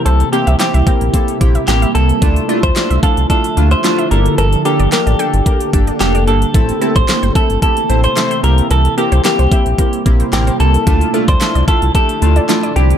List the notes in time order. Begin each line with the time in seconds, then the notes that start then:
Already playing: C3 G3 A#3 C4 E4 G4
0.05 C2 A4 C5, closed hi-hat
0.20 closed hi-hat
0.32 A#3 C4 E4 G4 C5, closed hi-hat
0.47 C2 E5, closed hi-hat
0.59 A#3 C4 E4 G4 C5, snare, clap, closed hi-hat
0.74 C2 E5, closed hi-hat
0.86 A#3 C4 E4 A#4 G5, kick, closed hi-hat
1.01 A#1, closed hi-hat
1.14 A#3 C4 E4 A4 C5, kick, closed hi-hat
1.28 closed hi-hat
1.41 A#1 A#3 C4 E4 G4, kick, closed hi-hat
1.55 E5, closed hi-hat
1.68 A1 A#3 C4 E4 G4, snare, clap, closed hi-hat
1.82 E5, closed hi-hat
1.95 C2 A#3 C4 E4 A4, closed hi-hat
2.09 closed hi-hat
2.22 D2 D3 F3 A3 D4 E4 F4 A4 D5, kick, closed hi-hat
2.36 closed hi-hat
2.49 A3 D4 E4 F4 D5, closed hi-hat
2.63 D2 C5 E5, kick, closed hi-hat
2.76 A3 D4 E4 F4 D5, snare, clap, closed hi-hat
2.90 C2 E5, closed hi-hat
3.03 A3 D4 E4 F4 A4 F5, kick, closed hi-hat
3.17 C2, closed hi-hat
3.30 A3 D4 E4 F4 A4 D5, kick, closed hi-hat
3.44 closed hi-hat
3.57 D2 A3 D4 E4 F4, closed hi-hat
3.71 C5 E5, closed hi-hat
3.84 A3 D4 E4 F4, snare, clap, closed hi-hat
3.98 E5, closed hi-hat
4.11 G1 A#3 D4 G4 A4 A#4, closed hi-hat
4.26 closed hi-hat
4.38 G1 A4 A#4, closed hi-hat
4.53 closed hi-hat
4.65 A#3 D4 G4 A4 A#4, closed hi-hat
4.79 G1 D5, closed hi-hat
4.92 A#3 D4 G4 A#4, snare, clap, closed hi-hat
5.07 A1 D5, closed hi-hat
5.19 A#3 D4 G4 A4 G5, closed hi-hat
5.34 G1, closed hi-hat
5.46 A#3 D4 G4 A#4, kick, closed hi-hat
5.61 closed hi-hat
5.73 G1 A#3 D4 G4 A4, kick, closed hi-hat
5.87 D5, closed hi-hat
6.00 F1 A#3 D4 G4 A4, snare, clap, closed hi-hat
6.15 D5, closed hi-hat
6.27 G1 A#3 D4 G4 A4, closed hi-hat
6.42 closed hi-hat
6.54 A1 C3 E3 A3 C4 E4 A4, kick, closed hi-hat
6.69 closed hi-hat
6.81 A3 C4 E4 A4, closed hi-hat
6.96 A1 C5, kick, closed hi-hat
7.08 A3 C4 E4 A4, snare, clap, closed hi-hat
7.23 G1 C5, closed hi-hat
7.35 A3 C4 E4 A4 E5, kick, closed hi-hat
7.50 G1, closed hi-hat
7.62 A3 C4 E4 G4 A4, kick, closed hi-hat
7.77 closed hi-hat
7.89 A1 A3 C4 E4 C5, closed hi-hat
8.04 C5, closed hi-hat
8.16 A3 C4 E4 C5, snare, clap, closed hi-hat
8.31 C5, closed hi-hat
8.43 C2 C3 G3 A#3 C4 E4 G4 A#4, closed hi-hat
8.58 closed hi-hat
8.71 C2 A4 A#4, closed hi-hat
8.85 closed hi-hat
8.97 A#3 C4 E4 G4 A#4, closed hi-hat
9.12 C2 C5, closed hi-hat
9.24 A#3 C4 E4 G4 A#4, snare, clap, closed hi-hat
9.39 C2 C5, closed hi-hat
9.51 A#3 C4 E4 G4 E5, kick, closed hi-hat
9.66 A#1, closed hi-hat
9.78 A#3 C4 E4 G4 A#4, kick, closed hi-hat
9.93 closed hi-hat
10.05 A#1 A#3 C4 E4 G4, kick, closed hi-hat
10.20 C5, closed hi-hat
10.32 A1 A#3 C4 E4 G4 A#4, snare, clap, closed hi-hat
10.47 C5, closed hi-hat
10.60 C2 A#3 C4 E4 A4, closed hi-hat
10.74 closed hi-hat
10.87 D2 D3 F3 A3 D4 E4 F4 A4, kick, closed hi-hat
11.01 closed hi-hat
11.14 A3 D4 E4 F4 A4, closed hi-hat
11.28 D2 C5 D5, kick, closed hi-hat
11.41 A3 D4 E4 F4 A4, snare, clap, closed hi-hat
11.55 C2 D5, closed hi-hat
11.68 A3 D4 E4 F4 A4 E5, kick, closed hi-hat
11.82 C2, closed hi-hat
11.95 A3 D4 E4 G4 A4, kick, closed hi-hat
12.09 closed hi-hat
12.22 D2 A3 D4 E4 F4, closed hi-hat
12.36 D5, closed hi-hat
12.49 A3 D4 E4 F4, snare, clap, closed hi-hat
12.63 D5, closed hi-hat
12.76 C2 G3 C4 D4 E4 G4, closed hi-hat
12.90 closed hi-hat